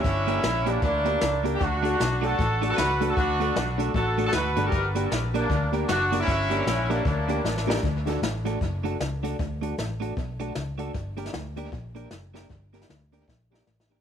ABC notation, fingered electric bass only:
X:1
M:4/4
L:1/8
Q:"Swing" 1/4=154
K:D
V:1 name="Fingered electric bass" clef=bass
G,,,2 _B,,,2 D,,2 C,,2 | D,,2 B,,,2 A,,,2 C,,2 | D,,2 B,,,2 A,,,2 D,, G,,, | G,,,2 _B,,,2 D,,2 F,,,2 |
G,,,2 _B,,,2 D,,2 A,,,2 | D,,2 A,,,2 F,,,2 C,,2 | D,,2 A,,,2 B,,,2 C,,2 | G,,,2 D,,2 _B,,,2 F,,,2 |
G,,,2 D,,2 _B,,,2 A,,,2 |]